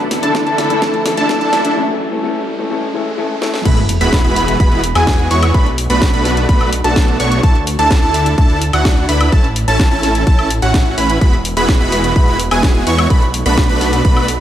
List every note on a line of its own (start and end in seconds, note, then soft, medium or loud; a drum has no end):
0.00 1.75 D2 medium
0.00 1.75 D3 medium
0.00 1.75 E4 medium
0.00 1.75 A4 medium
0.00 riser medium
0.11 snare medium
0.11 open hi-hat loud
0.22 0.67 E3 medium
0.22 0.67 A3 medium
0.22 0.44 D4 medium
0.22 0.68 D4 medium
0.22 0.44 E4 medium
0.22 0.44 A4 loud
0.22 0.68 A4 medium
0.22 0.44 A5 loud
0.22 closed hi-hat medium
0.35 kick loud
0.35 snare medium
0.35 closed hi-hat soft
0.47 0.79 D4 medium
0.47 0.79 E4 medium
0.47 0.79 A4 medium
0.47 0.79 A5 medium
0.47 closed hi-hat soft
0.58 snare medium
0.58 open hi-hat loud
0.70 0.80 E3 medium
0.70 0.80 A3 medium
0.70 0.80 D4 medium
0.70 0.80 A4 medium
0.70 closed hi-hat soft
0.81 0.96 E3 medium
0.81 0.96 A3 medium
0.81 0.95 D4 medium
0.81 0.96 D4 medium
0.81 0.95 E4 medium
0.81 0.95 A4 medium
0.81 0.96 A4 loud
0.81 0.95 A5 loud
0.81 kick loud
0.81 snare medium
0.81 closed hi-hat soft
0.94 closed hi-hat soft
1.06 snare medium
1.06 open hi-hat loud
1.17 1.62 E3 medium
1.17 1.62 A3 medium
1.17 1.38 D4 medium
1.17 1.62 D4 medium
1.17 1.38 E4 medium
1.17 1.38 A4 loud
1.17 1.62 A4 medium
1.17 1.38 A5 loud
1.17 closed hi-hat medium
1.29 kick loud
1.29 snare medium
1.29 closed hi-hat soft
1.41 1.74 D4 medium
1.41 1.74 E4 medium
1.41 1.74 A4 medium
1.41 1.74 A5 medium
1.41 closed hi-hat soft
1.53 snare medium
1.53 open hi-hat medium
1.64 1.74 E3 medium
1.64 1.75 A3 medium
1.64 1.75 D4 medium
1.64 1.75 A4 medium
1.64 closed hi-hat medium
1.76 1.90 E3 medium
1.76 1.90 A3 medium
1.76 1.91 C#4 medium
1.76 1.91 A4 loud
2.11 2.22 E3 medium
2.11 2.22 A3 medium
2.11 2.22 C#4 medium
2.11 2.22 A4 medium
2.23 2.37 E3 medium
2.23 2.38 A3 medium
2.23 2.38 C#4 medium
2.23 2.38 A4 loud
2.59 2.69 E3 medium
2.59 2.69 A3 medium
2.59 2.69 C#4 medium
2.59 2.69 A4 medium
2.70 2.85 E3 medium
2.70 2.85 A3 medium
2.70 2.85 C#4 medium
2.70 2.85 A4 loud
2.94 3.08 E3 medium
2.94 3.08 A3 medium
2.94 3.09 C#4 medium
2.94 3.09 A4 medium
3.18 3.32 E3 loud
3.18 3.32 A3 medium
3.18 3.32 C#4 medium
3.18 3.33 A4 loud
3.41 3.56 E3 loud
3.41 3.56 A3 loud
3.41 3.56 C#4 medium
3.41 3.56 A4 loud
3.41 snare medium
3.54 snare medium
3.65 3.99 E1 medium
3.65 3.78 G#3 loud
3.65 3.78 B3 medium
3.65 3.78 E4 medium
3.65 3.78 F#4 medium
3.65 3.78 B4 loud
3.65 3.78 B5 loud
3.65 kick loud
3.65 closed hi-hat medium
3.65 crash loud
3.65 sub drop medium
3.77 closed hi-hat soft
3.89 open hi-hat loud
4.01 4.22 E1 loud
4.01 4.22 G#3 loud
4.01 4.22 B3 medium
4.01 4.22 E4 medium
4.01 4.22 F#4 medium
4.01 4.22 B4 loud
4.01 4.22 B5 loud
4.01 closed hi-hat medium
4.13 kick loud
4.13 snare loud
4.13 closed hi-hat medium
4.25 4.58 E1 loud
4.25 4.57 G#3 medium
4.25 4.57 B3 medium
4.25 4.57 E4 medium
4.25 4.57 F#4 medium
4.25 4.57 B4 medium
4.25 4.57 B5 medium
4.25 closed hi-hat soft
4.36 open hi-hat medium
4.48 closed hi-hat medium
4.60 4.93 E1 loud
4.60 4.81 G#3 medium
4.60 4.81 B3 medium
4.60 4.81 E4 medium
4.60 4.81 F#4 medium
4.60 4.81 B4 loud
4.60 4.81 B5 loud
4.60 kick loud
4.60 closed hi-hat medium
4.72 closed hi-hat soft
4.84 open hi-hat loud
4.95 5.28 E2 loud
4.95 5.28 G#3 medium
4.95 5.28 B3 medium
4.95 5.28 E4 medium
4.95 5.28 F#4 medium
4.95 5.28 G#4 medium
4.95 5.28 G#5 medium
4.95 closed hi-hat medium
4.95 high woodblock medium
5.07 kick loud
5.07 snare loud
5.07 closed hi-hat medium
5.19 closed hi-hat soft
5.31 5.52 E2 loud
5.31 5.52 G#3 medium
5.31 5.52 B3 medium
5.31 5.52 E4 medium
5.31 5.52 F#4 medium
5.31 5.52 C#5 medium
5.31 5.52 C#6 medium
5.31 open hi-hat medium
5.43 closed hi-hat medium
5.43 high woodblock medium
5.54 5.88 B1 loud
5.54 5.67 A3 loud
5.54 5.67 B3 medium
5.54 5.67 D4 medium
5.54 5.67 F#4 medium
5.54 5.67 B4 loud
5.54 5.67 B5 loud
5.54 kick loud
5.54 closed hi-hat medium
5.66 closed hi-hat soft
5.78 open hi-hat loud
5.90 6.11 B1 medium
5.90 6.11 A3 loud
5.90 6.11 B3 medium
5.90 6.11 D4 loud
5.90 6.11 F#4 medium
5.90 6.11 B4 loud
5.90 6.11 B5 loud
5.90 closed hi-hat medium
6.02 kick loud
6.02 snare loud
6.02 closed hi-hat medium
6.13 6.47 B1 loud
6.13 6.46 A3 medium
6.13 6.46 B3 medium
6.13 6.46 D4 medium
6.13 6.46 F#4 medium
6.13 6.46 B4 medium
6.13 6.46 B5 medium
6.13 closed hi-hat soft
6.25 snare soft
6.25 open hi-hat loud
6.37 closed hi-hat medium
6.49 6.82 B1 loud
6.49 6.70 A3 medium
6.49 6.70 B3 medium
6.49 6.70 D4 medium
6.49 6.70 F#4 medium
6.49 6.70 B5 loud
6.49 kick loud
6.49 closed hi-hat medium
6.61 closed hi-hat soft
6.61 high woodblock medium
6.73 open hi-hat loud
6.84 7.17 B1 medium
6.84 7.17 A3 medium
6.84 7.17 B3 medium
6.84 7.17 D4 medium
6.84 7.17 F#4 medium
6.84 7.17 A4 medium
6.84 7.17 A5 medium
6.84 closed hi-hat medium
6.96 kick loud
6.96 snare loud
6.96 closed hi-hat medium
7.08 closed hi-hat soft
7.20 7.41 B1 loud
7.20 7.41 A3 medium
7.20 7.41 B3 medium
7.20 7.41 D4 medium
7.20 7.41 F#4 medium
7.20 7.41 C#5 medium
7.20 7.41 C#6 medium
7.20 open hi-hat medium
7.32 closed hi-hat medium
7.43 7.77 D2 medium
7.43 7.56 D4 medium
7.43 7.56 E4 medium
7.43 7.56 A4 loud
7.43 7.56 A5 loud
7.43 kick loud
7.43 closed hi-hat medium
7.55 closed hi-hat soft
7.67 open hi-hat loud
7.79 8.00 D2 medium
7.79 8.00 D4 loud
7.79 8.00 E4 medium
7.79 8.00 A4 loud
7.79 8.00 A5 loud
7.79 closed hi-hat medium
7.91 kick loud
7.91 snare loud
7.91 closed hi-hat medium
8.02 8.36 D2 loud
8.02 8.35 D4 medium
8.02 8.35 E4 medium
8.02 8.35 A4 medium
8.02 8.35 A5 medium
8.02 closed hi-hat soft
8.14 open hi-hat loud
8.26 closed hi-hat medium
8.38 8.71 D2 loud
8.38 8.59 D4 medium
8.38 8.59 E4 medium
8.38 8.59 A4 loud
8.38 8.59 A5 loud
8.38 kick loud
8.38 closed hi-hat soft
8.50 closed hi-hat soft
8.62 open hi-hat loud
8.73 9.06 D2 medium
8.73 9.06 D4 medium
8.73 9.06 E4 medium
8.73 9.06 F#4 medium
8.73 9.06 F#5 medium
8.73 closed hi-hat medium
8.73 high woodblock medium
8.85 kick loud
8.85 snare loud
8.85 closed hi-hat medium
8.97 closed hi-hat soft
9.09 9.30 D2 loud
9.09 9.30 D4 medium
9.09 9.30 E4 medium
9.09 9.30 B4 medium
9.09 9.30 B5 medium
9.09 open hi-hat loud
9.21 closed hi-hat medium
9.21 high woodblock medium
9.32 9.65 A1 loud
9.32 9.45 C#4 loud
9.32 9.45 E4 medium
9.32 9.45 A4 loud
9.32 9.45 A5 loud
9.32 kick loud
9.32 closed hi-hat soft
9.44 closed hi-hat soft
9.56 open hi-hat loud
9.68 9.89 A1 loud
9.68 9.89 C#4 loud
9.68 9.89 E4 medium
9.68 9.89 A4 loud
9.68 9.89 A5 loud
9.68 closed hi-hat medium
9.80 kick loud
9.80 snare loud
9.80 closed hi-hat medium
9.91 10.25 A1 loud
9.91 10.24 C#4 medium
9.91 10.24 E4 medium
9.91 10.24 A4 medium
9.91 10.24 A5 medium
9.91 closed hi-hat soft
10.03 snare soft
10.03 open hi-hat loud
10.15 closed hi-hat soft
10.27 10.60 A1 loud
10.27 10.48 C#4 medium
10.27 10.48 E4 medium
10.27 10.48 A5 loud
10.27 kick loud
10.27 closed hi-hat soft
10.39 closed hi-hat soft
10.39 high woodblock medium
10.51 open hi-hat loud
10.62 10.95 A1 loud
10.62 10.95 C#4 medium
10.62 10.95 E4 medium
10.62 10.95 F#4 medium
10.62 10.95 F#5 medium
10.62 closed hi-hat soft
10.74 kick loud
10.74 snare loud
10.74 closed hi-hat soft
10.86 closed hi-hat soft
10.98 11.19 A1 loud
10.98 11.19 C#4 medium
10.98 11.19 E4 medium
10.98 11.19 B4 medium
10.98 11.19 B5 medium
10.98 open hi-hat medium
11.10 closed hi-hat medium
11.21 11.54 E1 loud
11.21 11.34 G#3 loud
11.21 11.34 B3 medium
11.21 11.34 E4 medium
11.21 11.34 F#4 medium
11.21 11.34 B4 loud
11.21 11.34 B5 loud
11.21 kick loud
11.21 closed hi-hat soft
11.33 closed hi-hat soft
11.45 open hi-hat loud
11.57 11.78 E1 medium
11.57 11.78 G#3 loud
11.57 11.78 B3 medium
11.57 11.78 E4 medium
11.57 11.78 F#4 medium
11.57 11.78 B4 loud
11.57 11.78 B5 loud
11.57 closed hi-hat medium
11.69 kick loud
11.69 snare loud
11.69 closed hi-hat soft
11.80 12.14 E1 loud
11.80 12.13 G#3 medium
11.80 12.13 B3 medium
11.80 12.13 E4 medium
11.80 12.13 F#4 medium
11.80 12.13 B4 medium
11.80 12.13 B5 medium
11.80 closed hi-hat soft
11.92 open hi-hat loud
12.04 closed hi-hat soft
12.16 12.49 E1 loud
12.16 12.37 G#3 medium
12.16 12.37 B3 medium
12.16 12.37 E4 medium
12.16 12.37 F#4 medium
12.16 12.37 B4 loud
12.16 12.37 B5 loud
12.16 kick loud
12.16 closed hi-hat soft
12.28 closed hi-hat soft
12.39 open hi-hat loud
12.51 12.84 E1 loud
12.51 12.84 G#3 medium
12.51 12.84 B3 medium
12.51 12.84 E4 medium
12.51 12.84 F#4 medium
12.51 12.84 G#4 medium
12.51 12.84 G#5 medium
12.51 closed hi-hat soft
12.51 high woodblock medium
12.63 kick loud
12.63 snare loud
12.63 closed hi-hat soft
12.75 closed hi-hat soft
12.87 13.08 E2 medium
12.87 13.07 G#3 medium
12.87 13.08 B3 medium
12.87 13.08 E4 medium
12.87 13.07 F#4 medium
12.87 13.08 C#5 medium
12.87 13.08 C#6 medium
12.87 open hi-hat medium
12.99 closed hi-hat medium
12.99 high woodblock medium
13.10 13.43 B1 loud
13.10 13.23 A3 loud
13.10 13.23 B3 medium
13.10 13.23 D4 medium
13.10 13.23 F#4 medium
13.10 13.23 B4 loud
13.10 13.23 B5 loud
13.10 kick loud
13.10 closed hi-hat medium
13.22 closed hi-hat soft
13.34 open hi-hat loud
13.46 13.67 B1 loud
13.46 13.67 A3 loud
13.46 13.67 B3 medium
13.46 13.67 D4 medium
13.46 13.67 F#4 medium
13.46 13.67 B4 loud
13.46 13.67 B5 loud
13.46 closed hi-hat medium
13.58 kick loud
13.58 snare loud
13.58 closed hi-hat medium
13.69 14.03 B1 loud
13.69 14.02 A3 medium
13.69 14.02 B3 medium
13.69 14.02 D4 medium
13.69 14.02 F#4 medium
13.69 14.02 B4 medium
13.69 14.02 B5 medium
13.69 closed hi-hat soft
13.81 snare soft
13.81 open hi-hat medium
13.93 closed hi-hat medium
14.05 14.38 B1 loud
14.05 14.26 A3 medium
14.05 14.26 B3 medium
14.05 14.26 D4 medium
14.05 14.26 F#4 medium
14.05 14.26 B4 loud
14.05 14.26 B5 loud
14.05 kick loud
14.05 closed hi-hat soft
14.17 closed hi-hat soft
14.17 high woodblock medium
14.28 open hi-hat loud